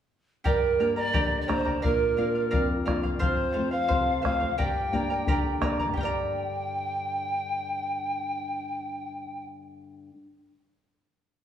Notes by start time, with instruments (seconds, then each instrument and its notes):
0.44 nylon-string guitar G2, charango G4 A#4 D5 G5 A#5, pan flute A#4, bombo low
0.80 nylon-string guitar A#3 D4 G4, charango A#4 D5 G5 A#5
0.96 charango A#4 D5 A#5, pan flute D5
1.13 nylon-string guitar D3, charango G4 A#4 D5 G5 A#5, bombo low
1.41 pan flute D5
1.48 nylon-string guitar A#3 D4 G4, charango A#4 D5 G5 A#5, pan flute C5, bombo rim, bombo low
1.65 charango A#4 D5 A#5, bombo low
1.82 nylon-string guitar A#2, charango A#4 D5 F5, pan flute A#4, bombo low
2.17 nylon-string guitar A#3 D4 F4, charango A#4 D5 F5
2.35 charango D5 F5
2.51 nylon-string guitar F2, charango A#4 D5 F5, bombo low
2.85 nylon-string guitar A#3 D4 F4, charango A#4 D5 F5, bombo rim, bombo low
3.03 charango D5 F5, bombo low
3.19 nylon-string guitar F2, charango A4 C5 F5, pan flute C5, bombo low
3.53 nylon-string guitar A3 C4, charango A4 C5 F5
3.57 nylon-string guitar F4
3.71 charango C5 F5, pan flute F5
3.88 nylon-string guitar C3, charango A4 C5 F5, bombo low
4.22 nylon-string guitar A3 C4 F4, charango A4 C5 F5, pan flute F5, bombo rim, bombo low
4.40 charango C5 F5, bombo low
4.58 nylon-string guitar G2, charango G4 A#4 D5 G5 A#5, pan flute G5, bombo low
4.92 nylon-string guitar A#3 D4 G4, charango A#4 D5 G5 A#5, bombo low
5.10 charango A#4 D5 A#5
5.26 nylon-string guitar D3, charango G4 A#4 D5 G5 A#5, bombo low
5.61 nylon-string guitar A#3 D4 G4, charango A#4 D5 G5 A#5, bombo rim, bombo low
5.79 charango A#4 D5 A#5, bombo low
5.86 nylon-string guitar G2 D3
5.93 nylon-string guitar G3 D4, charango G4, pan flute G5, bombo low
5.97 nylon-string guitar A#4, charango A#4 G5
6.03 charango D5 A#5, nylon-string guitar D5